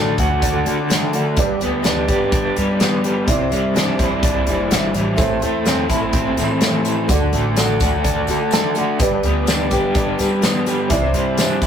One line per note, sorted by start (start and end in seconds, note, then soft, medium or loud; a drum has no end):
0.00 0.15 A1 medium
0.00 0.19 D3 medium
0.00 0.66 D3 medium
0.00 0.16 A3 medium
0.00 0.90 A3 medium
0.00 0.17 D4 medium
0.00 0.18 F#4 medium
0.00 1.33 F#4 medium
0.00 0.18 A4 medium
0.00 1.34 A4 medium
0.00 1.34 D5 medium
0.00 1.35 F#5 medium
0.00 5.14 D6 medium
0.17 0.62 D2 medium
0.17 0.30 A3 medium
0.17 0.30 D4 medium
0.17 0.29 F#4 medium
0.17 0.28 A4 medium
0.17 kick medium
0.17 closed hi-hat medium
0.29 0.54 D4 soft
0.29 0.53 F#4 medium
0.29 0.51 A4 medium
0.42 1.85 D4 medium
0.42 kick loud
0.42 closed hi-hat medium
0.53 0.64 D4 soft
0.53 0.65 F#4 medium
0.53 0.65 A4 medium
0.64 1.33 D3 medium
0.64 1.13 D3 medium
0.64 0.77 A3 medium
0.64 0.78 D4 medium
0.64 0.77 F#4 medium
0.64 0.76 A4 medium
0.64 closed hi-hat medium
0.77 0.88 D4 soft
0.77 0.88 F#4 medium
0.77 0.88 A4 medium
0.88 1.13 D3 medium
0.88 1.11 A3 medium
0.88 1.13 D4 medium
0.88 1.14 F#4 medium
0.88 1.14 A4 medium
0.88 snare loud
0.88 closed hi-hat loud
1.13 1.38 D3 medium
1.13 1.25 A3 medium
1.13 1.25 D4 medium
1.13 1.24 F#4 medium
1.13 1.22 A4 medium
1.13 closed hi-hat medium
1.24 1.36 D4 soft
1.24 1.37 F#4 soft
1.24 1.37 A4 medium
1.36 1.59 G1 loud
1.36 2.57 G2 medium
1.36 1.49 G3 medium
1.36 1.49 D4 medium
1.36 3.24 G4 medium
1.36 1.47 G4 medium
1.36 3.26 B4 medium
1.36 3.24 B4 medium
1.36 1.46 B4 loud
1.36 3.25 D5 medium
1.36 3.26 G5 medium
1.36 kick loud
1.36 closed hi-hat medium
1.47 1.59 D4 soft
1.47 1.60 G4 medium
1.47 1.60 B4 medium
1.59 2.06 D2 medium
1.59 1.81 G3 medium
1.59 2.79 B3 medium
1.59 1.82 D4 medium
1.59 1.83 G4 medium
1.59 1.83 B4 medium
1.59 closed hi-hat medium
1.82 2.07 G3 medium
1.82 2.08 D4 medium
1.82 2.09 G4 loud
1.82 2.09 B4 medium
1.82 snare loud
1.82 closed hi-hat medium
2.08 2.52 G1 medium
2.08 2.21 G3 medium
2.08 2.21 D4 medium
2.08 2.21 G4 medium
2.08 2.20 B4 medium
2.08 kick medium
2.08 closed hi-hat medium
2.21 2.46 D4 soft
2.21 2.45 G4 medium
2.21 2.43 B4 medium
2.32 3.28 D4 medium
2.32 kick loud
2.32 closed hi-hat medium
2.45 2.57 D4 soft
2.45 2.57 G4 medium
2.45 2.57 B4 medium
2.56 3.25 G2 medium
2.56 2.69 G3 medium
2.56 2.69 D4 medium
2.56 2.69 G4 medium
2.56 2.68 B4 medium
2.56 closed hi-hat medium
2.69 2.79 D4 soft
2.69 2.79 G4 medium
2.69 2.80 B4 medium
2.79 3.04 G3 medium
2.79 3.28 B3 medium
2.79 3.04 D4 medium
2.79 3.04 G4 medium
2.79 3.05 B4 medium
2.79 snare loud
2.79 closed hi-hat medium
3.04 3.16 G3 medium
3.04 3.16 D4 medium
3.04 3.15 G4 medium
3.04 3.13 B4 medium
3.04 closed hi-hat medium
3.15 3.26 D4 soft
3.15 3.28 G4 medium
3.15 3.27 B4 medium
3.27 3.50 C2 medium
3.27 3.39 C3 medium
3.27 3.40 E3 medium
3.27 3.40 G3 medium
3.27 3.40 D4 medium
3.27 5.15 E4 medium
3.27 3.39 E4 medium
3.27 5.16 C5 medium
3.27 3.38 C5 medium
3.27 5.16 C5 medium
3.27 5.16 D5 medium
3.27 7.05 E5 medium
3.27 kick loud
3.27 closed hi-hat loud
3.39 3.48 G3 soft
3.39 3.49 D4 soft
3.39 3.51 E4 medium
3.39 3.51 C5 medium
3.49 3.95 G2 medium
3.49 3.74 G3 medium
3.49 3.74 D4 medium
3.49 3.75 E4 medium
3.49 3.75 C5 medium
3.49 closed hi-hat medium
3.74 3.99 C3 medium
3.74 3.99 E3 medium
3.74 3.96 G3 medium
3.74 3.98 D4 medium
3.74 3.98 E4 medium
3.74 3.99 C5 loud
3.74 snare loud
3.74 closed hi-hat medium
3.98 4.43 C2 medium
3.98 4.11 G3 medium
3.98 4.10 D4 medium
3.98 4.10 E4 medium
3.98 4.09 C5 medium
3.98 kick medium
3.98 closed hi-hat medium
4.10 4.36 G3 soft
4.10 4.35 D4 medium
4.10 4.35 E4 medium
4.10 4.33 C5 medium
4.23 5.19 D4 medium
4.23 kick loud
4.23 closed hi-hat loud
4.35 4.45 G3 medium
4.35 4.46 D4 soft
4.35 4.46 E4 soft
4.35 4.47 C5 medium
4.46 4.69 F#1 medium
4.46 4.94 E3 medium
4.46 4.59 G3 medium
4.46 4.58 D4 medium
4.46 4.57 E4 medium
4.46 4.56 C5 medium
4.46 closed hi-hat medium
4.57 4.70 G3 soft
4.57 4.70 D4 medium
4.57 4.71 E4 medium
4.57 4.70 C5 medium
4.70 4.93 G1 medium
4.70 4.95 C3 medium
4.70 4.95 E3 medium
4.70 4.92 G3 medium
4.70 4.92 D4 medium
4.70 4.94 E4 medium
4.70 4.94 C5 medium
4.70 snare loud
4.70 closed hi-hat loud
4.93 5.17 A1 medium
4.93 5.19 E3 medium
4.93 5.16 G3 medium
4.93 5.17 D4 medium
4.93 5.16 E4 medium
4.93 5.17 C5 medium
4.93 closed hi-hat medium
5.16 5.40 A1 medium
5.16 5.29 A2 medium
5.16 5.30 E3 medium
5.16 5.29 A3 medium
5.16 5.30 C4 medium
5.16 7.04 E4 medium
5.16 5.29 E4 medium
5.16 7.05 A4 medium
5.16 5.28 A4 medium
5.16 7.08 A4 medium
5.16 7.06 C5 medium
5.16 7.07 C6 medium
5.16 kick loud
5.16 closed hi-hat medium
5.16 tambourine medium
5.20 6.39 A2 medium
5.29 5.39 A3 medium
5.29 5.40 C4 medium
5.29 5.41 E4 medium
5.29 5.41 A4 medium
5.40 5.86 E2 medium
5.40 5.64 A3 medium
5.40 5.65 C4 medium
5.40 5.65 E4 medium
5.40 5.64 A4 medium
5.40 closed hi-hat medium
5.64 5.89 A2 medium
5.64 5.89 E3 medium
5.64 5.87 A3 medium
5.64 5.89 C4 medium
5.64 5.89 E4 medium
5.64 5.90 A4 medium
5.64 snare loud
5.64 closed hi-hat medium
5.64 tambourine medium
5.89 6.34 A1 medium
5.89 6.01 A3 medium
5.89 6.02 C4 medium
5.89 6.01 E4 medium
5.89 6.00 A4 medium
5.89 kick medium
5.89 closed hi-hat medium
5.89 tambourine medium
6.01 6.26 A3 soft
6.01 6.26 C4 soft
6.01 6.25 E4 soft
6.01 6.24 A4 medium
6.13 7.09 C4 medium
6.13 kick loud
6.13 closed hi-hat medium
6.25 6.36 A3 medium
6.25 6.38 C4 medium
6.25 6.38 E4 soft
6.25 6.37 A4 medium
6.37 7.05 A2 medium
6.37 6.84 E3 medium
6.37 6.50 A3 medium
6.37 6.50 C4 medium
6.37 6.50 E4 medium
6.37 6.49 A4 medium
6.37 snare soft
6.37 closed hi-hat medium
6.37 tambourine medium
6.50 6.61 A3 soft
6.50 6.61 C4 soft
6.50 6.62 E4 medium
6.50 6.62 A4 medium
6.61 6.85 A2 medium
6.61 6.85 E3 medium
6.61 6.82 A3 medium
6.61 6.83 C4 medium
6.61 6.85 E4 medium
6.61 6.85 A4 medium
6.61 snare loud
6.61 closed hi-hat medium
6.61 tambourine medium
6.83 7.09 E3 medium
6.83 7.07 A3 medium
6.83 7.09 C4 medium
6.83 7.09 E4 medium
6.83 7.09 A4 medium
6.83 closed hi-hat medium
6.83 tambourine medium
7.08 7.31 D2 loud
7.08 7.21 D3 medium
7.08 7.21 A3 medium
7.08 7.21 D4 medium
7.08 8.26 F#4 medium
7.08 7.21 F#4 medium
7.08 8.26 A4 medium
7.08 7.19 A4 medium
7.08 8.99 A4 medium
7.08 8.27 D5 medium
7.08 8.99 F#5 medium
7.08 8.98 D6 medium
7.08 kick loud
7.08 closed hi-hat loud
7.08 tambourine medium
7.21 7.32 D4 soft
7.21 7.33 F#4 medium
7.21 7.33 A4 medium
7.33 7.77 A1 medium
7.33 7.56 A3 medium
7.33 7.56 D4 medium
7.33 7.57 F#4 medium
7.33 7.57 A4 medium
7.33 closed hi-hat medium
7.56 7.81 D3 medium
7.56 7.79 A3 medium
7.56 7.80 D4 medium
7.56 7.81 F#4 medium
7.56 7.81 A4 loud
7.56 snare loud
7.56 closed hi-hat medium
7.56 tambourine loud
7.80 8.25 D2 medium
7.80 7.93 A3 medium
7.80 7.93 D4 medium
7.80 7.93 F#4 medium
7.80 7.92 A4 medium
7.80 kick medium
7.80 closed hi-hat medium
7.80 tambourine medium
7.93 8.18 D4 soft
7.93 8.16 F#4 soft
7.93 8.15 A4 medium
8.04 9.49 D4 medium
8.04 kick loud
8.04 closed hi-hat medium
8.16 8.28 D4 soft
8.16 8.28 F#4 medium
8.16 8.28 A4 medium
8.27 8.96 D3 medium
8.27 8.76 D3 medium
8.27 8.40 A3 medium
8.27 8.41 D4 medium
8.27 9.00 F#4 medium
8.27 8.40 F#4 medium
8.27 9.00 A4 soft
8.27 8.38 A4 medium
8.27 9.01 D5 medium
8.27 closed hi-hat medium
8.27 tambourine medium
8.39 8.52 D4 soft
8.39 8.52 F#4 medium
8.39 8.52 A4 medium
8.51 8.76 D3 medium
8.51 8.73 A3 medium
8.51 8.74 D4 loud
8.51 8.75 F#4 medium
8.51 8.75 A4 loud
8.51 8.75 A5 medium
8.51 snare loud
8.51 closed hi-hat loud
8.51 tambourine medium
8.74 9.01 D3 medium
8.74 8.99 A3 medium
8.74 8.99 D4 medium
8.74 9.00 F#4 medium
8.74 9.00 A4 medium
8.74 8.99 F#5 medium
8.74 closed hi-hat medium
8.74 tambourine medium
8.99 9.22 G1 medium
8.99 10.20 G2 medium
8.99 9.11 G3 medium
8.99 9.12 D4 medium
8.99 10.87 G4 medium
8.99 9.11 G4 medium
8.99 10.89 B4 medium
8.99 10.87 B4 medium
8.99 9.10 B4 medium
8.99 10.88 D5 medium
8.99 10.89 G5 medium
8.99 11.67 D6 medium
8.99 kick loud
8.99 closed hi-hat loud
8.99 tambourine medium
9.11 9.23 D4 medium
9.11 9.23 G4 medium
9.11 9.23 B4 medium
9.23 9.67 D2 medium
9.23 9.45 G3 medium
9.23 10.42 B3 medium
9.23 9.46 D4 medium
9.23 9.46 G4 medium
9.23 9.47 B4 medium
9.23 closed hi-hat medium
9.46 9.69 G3 medium
9.46 9.71 D4 medium
9.46 9.71 G4 medium
9.46 9.72 B4 medium
9.46 snare loud
9.46 closed hi-hat medium
9.46 tambourine loud
9.70 10.15 G1 medium
9.70 9.83 G3 medium
9.70 9.83 D4 medium
9.70 9.82 G4 medium
9.70 9.80 B4 medium
9.70 kick medium
9.70 closed hi-hat medium
9.70 tambourine medium
9.82 10.08 D4 soft
9.82 10.06 G4 soft
9.82 10.05 B4 medium
9.95 10.91 D4 medium
9.95 kick loud
9.95 closed hi-hat medium
10.06 10.17 D4 medium
10.06 10.18 G4 soft
10.06 10.18 B4 medium
10.18 10.87 G2 medium
10.18 10.30 G3 medium
10.18 10.30 D4 medium
10.18 10.29 G4 medium
10.18 10.28 B4 medium
10.18 snare soft
10.18 closed hi-hat medium
10.18 tambourine medium
10.29 10.41 D4 soft
10.29 10.42 G4 soft
10.29 10.42 B4 medium
10.41 10.64 G3 medium
10.41 10.91 B3 medium
10.41 10.65 D4 medium
10.41 10.65 G4 medium
10.41 10.66 B4 medium
10.41 snare loud
10.41 closed hi-hat medium
10.41 tambourine medium
10.65 10.78 G3 medium
10.65 10.78 D4 medium
10.65 10.78 G4 medium
10.65 10.77 B4 medium
10.65 closed hi-hat medium
10.65 tambourine medium
10.78 10.90 D4 soft
10.78 10.91 G4 medium
10.78 10.90 B4 soft
10.88 11.12 C2 loud
10.88 11.02 C3 medium
10.88 11.02 E3 medium
10.88 11.03 G3 medium
10.88 11.03 D4 medium
10.88 11.67 E4 medium
10.88 11.03 E4 medium
10.88 11.67 C5 medium
10.88 11.02 C5 medium
10.88 11.67 E5 medium
10.88 kick loud
10.88 closed hi-hat loud
10.88 tambourine medium
10.92 11.67 D5 medium
11.03 11.13 G3 medium
11.03 11.14 D4 medium
11.03 11.15 E4 medium
11.03 11.15 C5 medium
11.13 11.58 G2 medium
11.13 11.38 G3 medium
11.13 11.39 D4 medium
11.13 11.39 E4 medium
11.13 closed hi-hat medium
11.13 tambourine soft
11.17 11.40 C5 medium
11.38 11.62 C3 medium
11.38 11.63 E3 medium
11.38 11.62 G3 medium
11.38 11.63 D4 medium
11.38 11.63 E4 medium
11.38 11.63 C5 medium
11.38 snare loud
11.38 closed hi-hat medium
11.38 tambourine loud
11.61 11.67 C2 medium
11.61 11.67 G3 medium
11.61 11.67 E4 medium
11.61 kick medium
11.61 closed hi-hat medium
11.61 tambourine medium